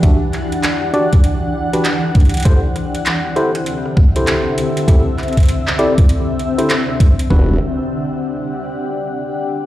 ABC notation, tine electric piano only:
X:1
M:4/4
L:1/16
Q:"Swing 16ths" 1/4=99
K:Em
V:1 name="Tine electric piano"
[DFGe] z4 z [DFGd] z4 [DFGB] z4 | [EGAc] z4 z [EGAc] z4 [EGAc]4- [EGAc] | [EGAe] z4 z [EGAd] z4 [EGAc] z4 | [DFGB]2 z12 z2 |]